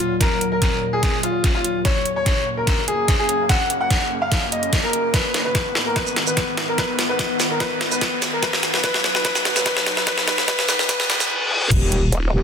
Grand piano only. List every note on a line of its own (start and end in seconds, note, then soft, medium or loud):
0.00 0.13 F4 medium
0.21 0.43 A#4 medium
0.52 0.82 A#4 medium
0.93 1.15 G#4 medium
1.23 1.46 F4 medium
1.55 1.77 F4 medium
1.85 2.08 C#5 medium
2.16 2.46 C#5 medium
2.57 2.80 A#4 medium
2.88 3.10 G#4 medium
3.19 3.42 G#4 medium
3.49 3.72 F#5 medium
3.81 4.10 F#5 medium
4.22 4.44 F5 medium
4.52 4.75 D#5 medium
4.83 5.06 A#4 medium
5.14 5.36 B4 medium
5.45 5.75 B4 medium
5.86 5.94 A#4 medium
5.96 6.19 B4 medium
6.27 6.57 B4 medium
6.68 6.77 A#4 medium
6.78 7.01 B4 medium
7.09 7.39 B4 medium
7.50 7.59 A#4 medium
7.60 7.83 B4 loud
7.92 8.21 B4 medium
8.33 8.41 A#4 medium
8.43 8.65 B4 medium
8.74 8.82 B4 medium
8.84 9.06 B4 loud
9.15 9.23 B4 medium
9.25 9.47 B4 loud
9.56 9.64 B4 medium
9.66 9.88 B4 loud
9.97 10.05 B4 medium
10.07 10.26 B4 medium
10.27 10.46 B4 loud
10.48 10.67 B4 loud
10.68 10.87 B4 loud
10.89 11.08 B4 loud
11.10 11.29 B4 loud